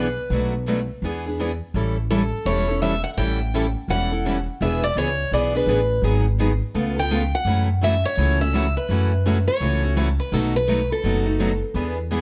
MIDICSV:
0, 0, Header, 1, 5, 480
1, 0, Start_track
1, 0, Tempo, 357569
1, 415, Time_signature, 4, 2, 24, 8
1, 16391, End_track
2, 0, Start_track
2, 0, Title_t, "Steel-string acoustic guitar"
2, 0, Program_c, 0, 25
2, 0, Note_on_c, 0, 71, 67
2, 378, Note_off_c, 0, 71, 0
2, 2826, Note_on_c, 0, 69, 76
2, 3305, Note_on_c, 0, 73, 88
2, 3315, Note_off_c, 0, 69, 0
2, 3748, Note_off_c, 0, 73, 0
2, 3784, Note_on_c, 0, 76, 95
2, 4057, Note_off_c, 0, 76, 0
2, 4077, Note_on_c, 0, 78, 85
2, 4145, Note_off_c, 0, 78, 0
2, 4262, Note_on_c, 0, 79, 97
2, 4984, Note_off_c, 0, 79, 0
2, 5241, Note_on_c, 0, 78, 94
2, 5953, Note_off_c, 0, 78, 0
2, 6202, Note_on_c, 0, 76, 90
2, 6492, Note_on_c, 0, 74, 85
2, 6496, Note_off_c, 0, 76, 0
2, 6672, Note_off_c, 0, 74, 0
2, 6686, Note_on_c, 0, 73, 82
2, 7156, Note_off_c, 0, 73, 0
2, 7161, Note_on_c, 0, 74, 89
2, 7456, Note_off_c, 0, 74, 0
2, 7473, Note_on_c, 0, 71, 75
2, 8073, Note_off_c, 0, 71, 0
2, 9388, Note_on_c, 0, 79, 99
2, 9820, Note_off_c, 0, 79, 0
2, 9865, Note_on_c, 0, 78, 85
2, 10298, Note_off_c, 0, 78, 0
2, 10524, Note_on_c, 0, 76, 84
2, 10789, Note_off_c, 0, 76, 0
2, 10812, Note_on_c, 0, 73, 93
2, 11251, Note_off_c, 0, 73, 0
2, 11292, Note_on_c, 0, 76, 90
2, 11731, Note_off_c, 0, 76, 0
2, 11772, Note_on_c, 0, 71, 77
2, 12670, Note_off_c, 0, 71, 0
2, 12721, Note_on_c, 0, 73, 88
2, 13334, Note_off_c, 0, 73, 0
2, 13688, Note_on_c, 0, 71, 71
2, 13875, Note_off_c, 0, 71, 0
2, 13875, Note_on_c, 0, 69, 81
2, 14172, Note_off_c, 0, 69, 0
2, 14179, Note_on_c, 0, 71, 84
2, 14613, Note_off_c, 0, 71, 0
2, 14662, Note_on_c, 0, 69, 77
2, 15553, Note_off_c, 0, 69, 0
2, 16391, End_track
3, 0, Start_track
3, 0, Title_t, "Steel-string acoustic guitar"
3, 0, Program_c, 1, 25
3, 445, Note_on_c, 1, 71, 66
3, 713, Note_off_c, 1, 71, 0
3, 909, Note_on_c, 1, 71, 82
3, 1052, Note_off_c, 1, 71, 0
3, 1409, Note_on_c, 1, 71, 71
3, 1675, Note_off_c, 1, 71, 0
3, 1890, Note_on_c, 1, 71, 89
3, 2022, Note_off_c, 1, 71, 0
3, 6197, Note_on_c, 1, 71, 71
3, 6471, Note_off_c, 1, 71, 0
3, 6684, Note_on_c, 1, 71, 89
3, 6821, Note_off_c, 1, 71, 0
3, 7170, Note_on_c, 1, 71, 73
3, 7437, Note_off_c, 1, 71, 0
3, 7639, Note_on_c, 1, 71, 93
3, 7779, Note_off_c, 1, 71, 0
3, 9076, Note_on_c, 1, 71, 68
3, 9350, Note_off_c, 1, 71, 0
3, 9548, Note_on_c, 1, 71, 87
3, 9693, Note_off_c, 1, 71, 0
3, 10013, Note_on_c, 1, 54, 54
3, 10020, Note_on_c, 1, 64, 62
3, 10034, Note_on_c, 1, 69, 63
3, 10299, Note_off_c, 1, 54, 0
3, 10303, Note_off_c, 1, 64, 0
3, 10309, Note_off_c, 1, 69, 0
3, 10489, Note_on_c, 1, 54, 75
3, 10499, Note_on_c, 1, 69, 86
3, 10500, Note_on_c, 1, 64, 84
3, 10644, Note_off_c, 1, 54, 0
3, 10649, Note_off_c, 1, 64, 0
3, 10649, Note_off_c, 1, 69, 0
3, 10971, Note_on_c, 1, 54, 61
3, 10988, Note_on_c, 1, 64, 69
3, 10994, Note_on_c, 1, 69, 72
3, 11258, Note_off_c, 1, 54, 0
3, 11266, Note_off_c, 1, 64, 0
3, 11269, Note_off_c, 1, 69, 0
3, 11452, Note_on_c, 1, 54, 85
3, 11467, Note_on_c, 1, 64, 95
3, 11468, Note_on_c, 1, 69, 92
3, 11605, Note_off_c, 1, 54, 0
3, 11612, Note_off_c, 1, 64, 0
3, 11613, Note_off_c, 1, 69, 0
3, 11923, Note_on_c, 1, 54, 59
3, 11943, Note_on_c, 1, 64, 72
3, 11950, Note_on_c, 1, 69, 69
3, 12214, Note_off_c, 1, 54, 0
3, 12223, Note_off_c, 1, 64, 0
3, 12227, Note_off_c, 1, 69, 0
3, 12424, Note_on_c, 1, 54, 79
3, 12437, Note_on_c, 1, 64, 83
3, 12444, Note_on_c, 1, 69, 80
3, 12571, Note_off_c, 1, 54, 0
3, 12577, Note_off_c, 1, 64, 0
3, 12581, Note_off_c, 1, 69, 0
3, 12890, Note_on_c, 1, 54, 61
3, 12906, Note_on_c, 1, 64, 64
3, 12911, Note_on_c, 1, 69, 68
3, 13177, Note_off_c, 1, 54, 0
3, 13185, Note_off_c, 1, 64, 0
3, 13187, Note_off_c, 1, 69, 0
3, 13369, Note_on_c, 1, 54, 83
3, 13385, Note_on_c, 1, 64, 92
3, 13392, Note_on_c, 1, 69, 97
3, 13523, Note_off_c, 1, 54, 0
3, 13531, Note_off_c, 1, 64, 0
3, 13534, Note_off_c, 1, 69, 0
3, 13871, Note_on_c, 1, 51, 64
3, 13878, Note_on_c, 1, 69, 68
3, 13880, Note_on_c, 1, 59, 63
3, 14147, Note_off_c, 1, 51, 0
3, 14150, Note_off_c, 1, 69, 0
3, 14151, Note_off_c, 1, 59, 0
3, 14345, Note_on_c, 1, 59, 87
3, 14347, Note_on_c, 1, 51, 85
3, 14350, Note_on_c, 1, 69, 84
3, 14490, Note_off_c, 1, 59, 0
3, 14492, Note_off_c, 1, 51, 0
3, 14493, Note_off_c, 1, 69, 0
3, 14824, Note_on_c, 1, 51, 64
3, 14835, Note_on_c, 1, 59, 70
3, 14839, Note_on_c, 1, 69, 66
3, 15103, Note_off_c, 1, 51, 0
3, 15108, Note_off_c, 1, 59, 0
3, 15110, Note_off_c, 1, 69, 0
3, 15310, Note_on_c, 1, 51, 83
3, 15314, Note_on_c, 1, 59, 92
3, 15324, Note_on_c, 1, 69, 86
3, 15452, Note_off_c, 1, 51, 0
3, 15454, Note_off_c, 1, 59, 0
3, 15460, Note_off_c, 1, 69, 0
3, 15803, Note_on_c, 1, 71, 72
3, 16072, Note_off_c, 1, 71, 0
3, 16274, Note_on_c, 1, 71, 86
3, 16391, Note_off_c, 1, 71, 0
3, 16391, End_track
4, 0, Start_track
4, 0, Title_t, "Steel-string acoustic guitar"
4, 0, Program_c, 2, 25
4, 433, Note_on_c, 2, 47, 57
4, 438, Note_on_c, 2, 54, 58
4, 442, Note_on_c, 2, 57, 61
4, 446, Note_on_c, 2, 62, 57
4, 448, Note_on_c, 2, 66, 63
4, 707, Note_off_c, 2, 47, 0
4, 709, Note_off_c, 2, 54, 0
4, 711, Note_off_c, 2, 57, 0
4, 713, Note_off_c, 2, 62, 0
4, 714, Note_off_c, 2, 66, 0
4, 908, Note_on_c, 2, 47, 74
4, 912, Note_on_c, 2, 54, 76
4, 914, Note_on_c, 2, 57, 78
4, 919, Note_on_c, 2, 62, 77
4, 922, Note_on_c, 2, 66, 79
4, 1051, Note_off_c, 2, 47, 0
4, 1053, Note_off_c, 2, 54, 0
4, 1054, Note_off_c, 2, 57, 0
4, 1057, Note_off_c, 2, 62, 0
4, 1058, Note_off_c, 2, 66, 0
4, 1397, Note_on_c, 2, 52, 58
4, 1401, Note_on_c, 2, 59, 61
4, 1408, Note_on_c, 2, 62, 62
4, 1408, Note_on_c, 2, 68, 71
4, 1669, Note_off_c, 2, 52, 0
4, 1671, Note_off_c, 2, 59, 0
4, 1675, Note_off_c, 2, 62, 0
4, 1675, Note_off_c, 2, 68, 0
4, 1693, Note_on_c, 2, 68, 55
4, 1708, Note_on_c, 2, 62, 43
4, 1720, Note_on_c, 2, 59, 42
4, 1858, Note_off_c, 2, 68, 0
4, 1866, Note_off_c, 2, 59, 0
4, 1866, Note_off_c, 2, 62, 0
4, 1875, Note_on_c, 2, 52, 76
4, 1882, Note_on_c, 2, 59, 78
4, 1886, Note_on_c, 2, 62, 73
4, 1886, Note_on_c, 2, 68, 76
4, 2015, Note_off_c, 2, 52, 0
4, 2019, Note_off_c, 2, 59, 0
4, 2021, Note_off_c, 2, 62, 0
4, 2021, Note_off_c, 2, 68, 0
4, 2351, Note_on_c, 2, 55, 56
4, 2352, Note_on_c, 2, 52, 56
4, 2360, Note_on_c, 2, 61, 59
4, 2364, Note_on_c, 2, 64, 59
4, 2366, Note_on_c, 2, 69, 67
4, 2626, Note_off_c, 2, 55, 0
4, 2627, Note_off_c, 2, 52, 0
4, 2631, Note_off_c, 2, 61, 0
4, 2633, Note_off_c, 2, 64, 0
4, 2634, Note_off_c, 2, 69, 0
4, 2825, Note_on_c, 2, 52, 73
4, 2829, Note_on_c, 2, 55, 78
4, 2832, Note_on_c, 2, 64, 85
4, 2833, Note_on_c, 2, 61, 76
4, 2839, Note_on_c, 2, 69, 76
4, 2971, Note_off_c, 2, 52, 0
4, 2972, Note_off_c, 2, 55, 0
4, 2974, Note_off_c, 2, 64, 0
4, 2975, Note_off_c, 2, 61, 0
4, 2977, Note_off_c, 2, 69, 0
4, 3304, Note_on_c, 2, 52, 58
4, 3310, Note_on_c, 2, 55, 61
4, 3313, Note_on_c, 2, 61, 64
4, 3313, Note_on_c, 2, 64, 70
4, 3320, Note_on_c, 2, 69, 65
4, 3583, Note_off_c, 2, 52, 0
4, 3587, Note_off_c, 2, 55, 0
4, 3588, Note_off_c, 2, 61, 0
4, 3588, Note_off_c, 2, 64, 0
4, 3588, Note_off_c, 2, 69, 0
4, 3604, Note_on_c, 2, 69, 51
4, 3622, Note_on_c, 2, 64, 50
4, 3632, Note_on_c, 2, 61, 43
4, 3774, Note_off_c, 2, 61, 0
4, 3774, Note_off_c, 2, 69, 0
4, 3780, Note_off_c, 2, 64, 0
4, 3788, Note_on_c, 2, 52, 74
4, 3790, Note_on_c, 2, 55, 83
4, 3790, Note_on_c, 2, 61, 76
4, 3796, Note_on_c, 2, 64, 73
4, 3802, Note_on_c, 2, 69, 78
4, 3932, Note_off_c, 2, 52, 0
4, 3933, Note_off_c, 2, 55, 0
4, 3933, Note_off_c, 2, 61, 0
4, 3936, Note_off_c, 2, 64, 0
4, 3939, Note_off_c, 2, 69, 0
4, 4270, Note_on_c, 2, 52, 58
4, 4276, Note_on_c, 2, 55, 58
4, 4276, Note_on_c, 2, 61, 60
4, 4283, Note_on_c, 2, 69, 67
4, 4285, Note_on_c, 2, 64, 63
4, 4547, Note_off_c, 2, 52, 0
4, 4550, Note_off_c, 2, 55, 0
4, 4550, Note_off_c, 2, 61, 0
4, 4553, Note_off_c, 2, 69, 0
4, 4554, Note_off_c, 2, 64, 0
4, 4753, Note_on_c, 2, 52, 74
4, 4761, Note_on_c, 2, 55, 86
4, 4761, Note_on_c, 2, 61, 78
4, 4769, Note_on_c, 2, 64, 82
4, 4770, Note_on_c, 2, 69, 91
4, 4895, Note_off_c, 2, 52, 0
4, 4899, Note_off_c, 2, 55, 0
4, 4899, Note_off_c, 2, 61, 0
4, 4903, Note_off_c, 2, 64, 0
4, 4904, Note_off_c, 2, 69, 0
4, 5230, Note_on_c, 2, 52, 63
4, 5232, Note_on_c, 2, 55, 62
4, 5240, Note_on_c, 2, 61, 64
4, 5242, Note_on_c, 2, 69, 69
4, 5243, Note_on_c, 2, 64, 64
4, 5507, Note_off_c, 2, 52, 0
4, 5508, Note_off_c, 2, 55, 0
4, 5512, Note_off_c, 2, 61, 0
4, 5513, Note_off_c, 2, 64, 0
4, 5513, Note_off_c, 2, 69, 0
4, 5531, Note_on_c, 2, 69, 52
4, 5540, Note_on_c, 2, 64, 50
4, 5553, Note_on_c, 2, 61, 40
4, 5698, Note_off_c, 2, 69, 0
4, 5703, Note_off_c, 2, 61, 0
4, 5703, Note_off_c, 2, 64, 0
4, 5707, Note_on_c, 2, 52, 76
4, 5714, Note_on_c, 2, 55, 83
4, 5720, Note_on_c, 2, 61, 77
4, 5720, Note_on_c, 2, 64, 87
4, 5721, Note_on_c, 2, 69, 92
4, 5852, Note_off_c, 2, 52, 0
4, 5856, Note_off_c, 2, 55, 0
4, 5859, Note_off_c, 2, 61, 0
4, 5859, Note_off_c, 2, 64, 0
4, 5860, Note_off_c, 2, 69, 0
4, 6197, Note_on_c, 2, 52, 60
4, 6200, Note_on_c, 2, 59, 63
4, 6208, Note_on_c, 2, 62, 62
4, 6210, Note_on_c, 2, 68, 67
4, 6471, Note_off_c, 2, 52, 0
4, 6472, Note_off_c, 2, 59, 0
4, 6476, Note_off_c, 2, 62, 0
4, 6477, Note_off_c, 2, 68, 0
4, 6667, Note_on_c, 2, 52, 78
4, 6668, Note_on_c, 2, 59, 82
4, 6678, Note_on_c, 2, 62, 83
4, 6683, Note_on_c, 2, 68, 87
4, 6813, Note_off_c, 2, 52, 0
4, 6813, Note_off_c, 2, 59, 0
4, 6818, Note_off_c, 2, 62, 0
4, 6821, Note_off_c, 2, 68, 0
4, 7151, Note_on_c, 2, 52, 59
4, 7158, Note_on_c, 2, 59, 67
4, 7161, Note_on_c, 2, 62, 72
4, 7166, Note_on_c, 2, 68, 72
4, 7418, Note_off_c, 2, 68, 0
4, 7428, Note_off_c, 2, 52, 0
4, 7431, Note_off_c, 2, 59, 0
4, 7433, Note_off_c, 2, 62, 0
4, 7434, Note_on_c, 2, 68, 55
4, 7450, Note_on_c, 2, 62, 51
4, 7460, Note_on_c, 2, 59, 42
4, 7610, Note_off_c, 2, 68, 0
4, 7614, Note_off_c, 2, 59, 0
4, 7619, Note_off_c, 2, 62, 0
4, 7626, Note_on_c, 2, 52, 76
4, 7630, Note_on_c, 2, 59, 83
4, 7632, Note_on_c, 2, 62, 92
4, 7639, Note_on_c, 2, 68, 88
4, 7772, Note_off_c, 2, 52, 0
4, 7774, Note_off_c, 2, 59, 0
4, 7775, Note_off_c, 2, 62, 0
4, 7779, Note_off_c, 2, 68, 0
4, 8099, Note_on_c, 2, 51, 59
4, 8101, Note_on_c, 2, 59, 62
4, 8106, Note_on_c, 2, 54, 65
4, 8110, Note_on_c, 2, 63, 62
4, 8111, Note_on_c, 2, 68, 72
4, 8382, Note_off_c, 2, 51, 0
4, 8383, Note_off_c, 2, 59, 0
4, 8385, Note_off_c, 2, 54, 0
4, 8387, Note_off_c, 2, 63, 0
4, 8388, Note_off_c, 2, 68, 0
4, 8584, Note_on_c, 2, 51, 80
4, 8590, Note_on_c, 2, 54, 72
4, 8595, Note_on_c, 2, 59, 72
4, 8596, Note_on_c, 2, 63, 78
4, 8596, Note_on_c, 2, 68, 88
4, 8731, Note_off_c, 2, 51, 0
4, 8734, Note_off_c, 2, 54, 0
4, 8737, Note_off_c, 2, 59, 0
4, 8737, Note_off_c, 2, 63, 0
4, 8737, Note_off_c, 2, 68, 0
4, 9053, Note_on_c, 2, 49, 59
4, 9058, Note_on_c, 2, 57, 65
4, 9061, Note_on_c, 2, 59, 64
4, 9063, Note_on_c, 2, 65, 66
4, 9066, Note_on_c, 2, 69, 65
4, 9337, Note_off_c, 2, 69, 0
4, 9339, Note_off_c, 2, 49, 0
4, 9341, Note_off_c, 2, 57, 0
4, 9343, Note_off_c, 2, 59, 0
4, 9344, Note_off_c, 2, 65, 0
4, 9353, Note_on_c, 2, 69, 50
4, 9369, Note_on_c, 2, 65, 46
4, 9380, Note_on_c, 2, 59, 41
4, 9529, Note_off_c, 2, 59, 0
4, 9530, Note_off_c, 2, 69, 0
4, 9534, Note_off_c, 2, 65, 0
4, 9536, Note_on_c, 2, 49, 70
4, 9540, Note_on_c, 2, 57, 78
4, 9545, Note_on_c, 2, 59, 82
4, 9550, Note_on_c, 2, 65, 75
4, 9553, Note_on_c, 2, 69, 90
4, 9687, Note_off_c, 2, 49, 0
4, 9689, Note_off_c, 2, 57, 0
4, 9692, Note_off_c, 2, 59, 0
4, 9694, Note_off_c, 2, 65, 0
4, 9696, Note_off_c, 2, 69, 0
4, 10025, Note_on_c, 2, 49, 58
4, 10027, Note_on_c, 2, 52, 65
4, 10029, Note_on_c, 2, 57, 67
4, 10029, Note_on_c, 2, 61, 63
4, 10035, Note_on_c, 2, 66, 62
4, 10305, Note_off_c, 2, 49, 0
4, 10306, Note_off_c, 2, 52, 0
4, 10307, Note_off_c, 2, 57, 0
4, 10307, Note_off_c, 2, 61, 0
4, 10310, Note_off_c, 2, 66, 0
4, 10502, Note_on_c, 2, 49, 85
4, 10510, Note_on_c, 2, 52, 80
4, 10510, Note_on_c, 2, 57, 73
4, 10514, Note_on_c, 2, 61, 85
4, 10514, Note_on_c, 2, 66, 89
4, 10650, Note_off_c, 2, 49, 0
4, 10654, Note_off_c, 2, 52, 0
4, 10654, Note_off_c, 2, 57, 0
4, 10656, Note_off_c, 2, 61, 0
4, 10656, Note_off_c, 2, 66, 0
4, 10975, Note_on_c, 2, 49, 65
4, 10984, Note_on_c, 2, 52, 62
4, 10988, Note_on_c, 2, 57, 61
4, 10990, Note_on_c, 2, 61, 67
4, 10995, Note_on_c, 2, 66, 63
4, 11257, Note_off_c, 2, 66, 0
4, 11260, Note_off_c, 2, 49, 0
4, 11264, Note_off_c, 2, 52, 0
4, 11266, Note_off_c, 2, 57, 0
4, 11267, Note_off_c, 2, 61, 0
4, 11273, Note_on_c, 2, 66, 47
4, 11288, Note_on_c, 2, 61, 47
4, 11301, Note_on_c, 2, 57, 43
4, 11450, Note_off_c, 2, 66, 0
4, 11457, Note_off_c, 2, 61, 0
4, 11459, Note_off_c, 2, 57, 0
4, 11463, Note_on_c, 2, 49, 79
4, 11472, Note_on_c, 2, 52, 77
4, 11475, Note_on_c, 2, 57, 75
4, 11477, Note_on_c, 2, 61, 85
4, 11481, Note_on_c, 2, 66, 90
4, 11610, Note_off_c, 2, 49, 0
4, 11615, Note_off_c, 2, 52, 0
4, 11616, Note_off_c, 2, 57, 0
4, 11617, Note_off_c, 2, 61, 0
4, 11619, Note_off_c, 2, 66, 0
4, 11955, Note_on_c, 2, 49, 64
4, 11958, Note_on_c, 2, 52, 63
4, 11962, Note_on_c, 2, 61, 62
4, 11963, Note_on_c, 2, 57, 61
4, 11972, Note_on_c, 2, 66, 63
4, 12230, Note_off_c, 2, 49, 0
4, 12231, Note_off_c, 2, 52, 0
4, 12233, Note_off_c, 2, 57, 0
4, 12233, Note_off_c, 2, 61, 0
4, 12238, Note_off_c, 2, 66, 0
4, 12425, Note_on_c, 2, 49, 88
4, 12426, Note_on_c, 2, 52, 78
4, 12432, Note_on_c, 2, 57, 89
4, 12435, Note_on_c, 2, 61, 82
4, 12438, Note_on_c, 2, 66, 86
4, 12571, Note_off_c, 2, 49, 0
4, 12572, Note_off_c, 2, 52, 0
4, 12575, Note_off_c, 2, 57, 0
4, 12576, Note_off_c, 2, 61, 0
4, 12578, Note_off_c, 2, 66, 0
4, 12899, Note_on_c, 2, 49, 61
4, 12905, Note_on_c, 2, 52, 64
4, 12907, Note_on_c, 2, 57, 67
4, 12912, Note_on_c, 2, 61, 65
4, 12915, Note_on_c, 2, 66, 75
4, 13181, Note_off_c, 2, 49, 0
4, 13184, Note_off_c, 2, 52, 0
4, 13184, Note_off_c, 2, 66, 0
4, 13185, Note_off_c, 2, 57, 0
4, 13188, Note_off_c, 2, 61, 0
4, 13200, Note_on_c, 2, 66, 58
4, 13215, Note_on_c, 2, 61, 47
4, 13223, Note_on_c, 2, 57, 44
4, 13364, Note_off_c, 2, 57, 0
4, 13368, Note_off_c, 2, 66, 0
4, 13369, Note_off_c, 2, 61, 0
4, 13372, Note_on_c, 2, 49, 76
4, 13376, Note_on_c, 2, 52, 77
4, 13380, Note_on_c, 2, 57, 91
4, 13384, Note_on_c, 2, 66, 82
4, 13385, Note_on_c, 2, 61, 92
4, 13525, Note_off_c, 2, 49, 0
4, 13526, Note_off_c, 2, 52, 0
4, 13528, Note_off_c, 2, 57, 0
4, 13531, Note_off_c, 2, 61, 0
4, 13531, Note_off_c, 2, 66, 0
4, 13861, Note_on_c, 2, 47, 62
4, 13865, Note_on_c, 2, 54, 60
4, 13868, Note_on_c, 2, 57, 62
4, 13870, Note_on_c, 2, 63, 66
4, 13874, Note_on_c, 2, 66, 70
4, 14142, Note_off_c, 2, 47, 0
4, 14144, Note_off_c, 2, 54, 0
4, 14146, Note_off_c, 2, 57, 0
4, 14146, Note_off_c, 2, 63, 0
4, 14148, Note_off_c, 2, 66, 0
4, 14331, Note_on_c, 2, 47, 82
4, 14337, Note_on_c, 2, 54, 81
4, 14340, Note_on_c, 2, 57, 87
4, 14350, Note_on_c, 2, 66, 78
4, 14352, Note_on_c, 2, 63, 82
4, 14484, Note_off_c, 2, 47, 0
4, 14487, Note_off_c, 2, 54, 0
4, 14488, Note_off_c, 2, 57, 0
4, 14493, Note_off_c, 2, 66, 0
4, 14494, Note_off_c, 2, 63, 0
4, 14814, Note_on_c, 2, 47, 64
4, 14817, Note_on_c, 2, 54, 60
4, 14820, Note_on_c, 2, 57, 57
4, 14829, Note_on_c, 2, 63, 63
4, 14831, Note_on_c, 2, 66, 68
4, 15093, Note_off_c, 2, 66, 0
4, 15098, Note_off_c, 2, 47, 0
4, 15100, Note_off_c, 2, 54, 0
4, 15101, Note_off_c, 2, 57, 0
4, 15105, Note_off_c, 2, 63, 0
4, 15109, Note_on_c, 2, 66, 54
4, 15120, Note_on_c, 2, 63, 50
4, 15133, Note_on_c, 2, 57, 43
4, 15284, Note_off_c, 2, 57, 0
4, 15286, Note_off_c, 2, 66, 0
4, 15292, Note_off_c, 2, 63, 0
4, 15293, Note_on_c, 2, 47, 74
4, 15299, Note_on_c, 2, 54, 83
4, 15300, Note_on_c, 2, 57, 81
4, 15307, Note_on_c, 2, 63, 84
4, 15310, Note_on_c, 2, 66, 92
4, 15444, Note_off_c, 2, 47, 0
4, 15447, Note_off_c, 2, 54, 0
4, 15448, Note_off_c, 2, 57, 0
4, 15451, Note_off_c, 2, 63, 0
4, 15453, Note_off_c, 2, 66, 0
4, 15774, Note_on_c, 2, 52, 61
4, 15777, Note_on_c, 2, 59, 63
4, 15787, Note_on_c, 2, 62, 60
4, 15790, Note_on_c, 2, 68, 62
4, 16057, Note_off_c, 2, 52, 0
4, 16059, Note_off_c, 2, 59, 0
4, 16064, Note_off_c, 2, 62, 0
4, 16065, Note_off_c, 2, 68, 0
4, 16253, Note_on_c, 2, 52, 83
4, 16262, Note_on_c, 2, 59, 86
4, 16262, Note_on_c, 2, 62, 84
4, 16269, Note_on_c, 2, 68, 85
4, 16391, Note_off_c, 2, 52, 0
4, 16391, Note_off_c, 2, 59, 0
4, 16391, Note_off_c, 2, 62, 0
4, 16391, Note_off_c, 2, 68, 0
4, 16391, End_track
5, 0, Start_track
5, 0, Title_t, "Upright bass"
5, 0, Program_c, 3, 32
5, 0, Note_on_c, 3, 35, 76
5, 218, Note_off_c, 3, 35, 0
5, 402, Note_on_c, 3, 35, 84
5, 1175, Note_off_c, 3, 35, 0
5, 1368, Note_on_c, 3, 40, 77
5, 2139, Note_off_c, 3, 40, 0
5, 2337, Note_on_c, 3, 33, 80
5, 3105, Note_off_c, 3, 33, 0
5, 3294, Note_on_c, 3, 28, 73
5, 4064, Note_off_c, 3, 28, 0
5, 4259, Note_on_c, 3, 33, 82
5, 5027, Note_off_c, 3, 33, 0
5, 5209, Note_on_c, 3, 28, 78
5, 5981, Note_off_c, 3, 28, 0
5, 6185, Note_on_c, 3, 28, 88
5, 6566, Note_off_c, 3, 28, 0
5, 6650, Note_on_c, 3, 37, 74
5, 7062, Note_off_c, 3, 37, 0
5, 7134, Note_on_c, 3, 35, 75
5, 7544, Note_off_c, 3, 35, 0
5, 7603, Note_on_c, 3, 33, 84
5, 8018, Note_off_c, 3, 33, 0
5, 8077, Note_on_c, 3, 32, 81
5, 8854, Note_off_c, 3, 32, 0
5, 9056, Note_on_c, 3, 37, 77
5, 9825, Note_off_c, 3, 37, 0
5, 9998, Note_on_c, 3, 42, 84
5, 10774, Note_off_c, 3, 42, 0
5, 10969, Note_on_c, 3, 37, 77
5, 11741, Note_off_c, 3, 37, 0
5, 11932, Note_on_c, 3, 42, 82
5, 12702, Note_off_c, 3, 42, 0
5, 12893, Note_on_c, 3, 37, 75
5, 13662, Note_off_c, 3, 37, 0
5, 13852, Note_on_c, 3, 35, 90
5, 14622, Note_off_c, 3, 35, 0
5, 14816, Note_on_c, 3, 30, 74
5, 15584, Note_off_c, 3, 30, 0
5, 15763, Note_on_c, 3, 40, 84
5, 16391, Note_off_c, 3, 40, 0
5, 16391, End_track
0, 0, End_of_file